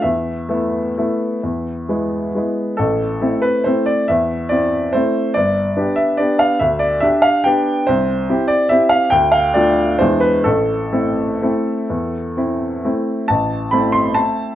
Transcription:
\new Staff \with { instrumentName = "Upright piano" } { \time 3/4 \key a \minor \tempo 4 = 137 << { e''2.~ | e''2 r4 | a'4. b'8 c''8 d''8 | e''4 d''4 c''4 |
d''4. e''8 d''8 f''8 | e''8 d''8 e''8 f''8 g''4 | c''4. d''8 e''8 f''8 | g''8 f''8 d''4 c''8 b'8 |
a'2.~ | a'2 r4 | a''4 b''8 c'''8 a''4 | } \\ { e,4 <a b e'>4 <a b e'>4 | e,4 <gis b e'>4 <gis b e'>4 | a,,4 <a c' e'>4 <a c' e'>4 | e,4 <c' e'>4 <a c' e'>4 |
g,,4 <b d' g'>4 <b d' g'>4 | d,4 <d' g'>4 <b d' g'>4 | c,4 <c' e' g'>4 <c' e' g'>4 | d,4 <a d' f'>4 <e, gis d' e'>4 |
a,,4 <a c' e'>4 <a c' e'>4 | e,4 <c' e'>4 <a c' e'>4 | a,,4 <a c' e'>2 | } >> }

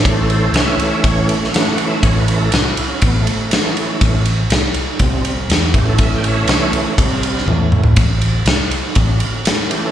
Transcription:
<<
  \new Staff \with { instrumentName = "Tonewheel organ" } { \time 4/4 \key a \mixolydian \tempo 4 = 121 <a' b' c''>8 <a' c''>8 <cis'' e''>8 <cis'' e''>8 cis''8 r8 \tuplet 3/2 { <f'' fis''>4 e''8 } | \tuplet 3/2 { cis''8 b'8 a'8 fis'8 e'8 cis'8 b8 a4~ } a4~ | a4~ a16 r2 r16 g'16 a'16 | e''16 g''16 <cis'' e''>4 r2 r8 |
r2. r8 g'16 a'16 | }
  \new Staff \with { instrumentName = "Tonewheel organ" } { \time 4/4 \key a \mixolydian <e a cis'>2. <e a cis'>4~ | <e a cis'>8 <e a cis'>8 r2 <e a cis'>4~ | <e a cis'>8 r4. <c g c'>8 r4 <e a cis'>8~ | <e a cis'>2 <c g c'>4 <e a cis'>8 r8 |
r2. r8 <e a cis'>8 | }
  \new Staff \with { instrumentName = "Fingered electric bass" } { \clef bass \time 4/4 \key a \mixolydian a,,4 c,8 r8 a,,8 r4. | a,,4 c,8 r8 a,,8 r4. | a,,4 c,8 r8 c,4 e,8 a,8 | a,,4 c,8 r8 c,4 e,8 a,8 |
a,,4 c,8 r8 a,,8 r4. | }
  \new DrumStaff \with { instrumentName = "Drums" } \drummode { \time 4/4 <bd cymr>8 cymr8 <cymr sn>8 cymr8 <bd cymr>8 cymr16 sn16 <cymr sn>8 cymr8 | <bd cymr>8 cymr8 <cymr sn>8 cymr8 <bd cymr>8 cymr8 <cymr sn>8 cymr8 | <bd cymr>8 cymr8 <cymr sn>8 cymr8 <bd cymr>8 cymr8 <cymr sn>8 <bd cymr>8 | <bd cymr>8 cymr8 <cymr sn>8 cymr8 <bd cymr>8 cymr16 sn16 tommh8 toml16 tomfh16 |
<bd cymr>8 cymr8 <cymr sn>8 cymr8 <bd cymr>8 cymr8 <cymr sn>8 cymr8 | }
>>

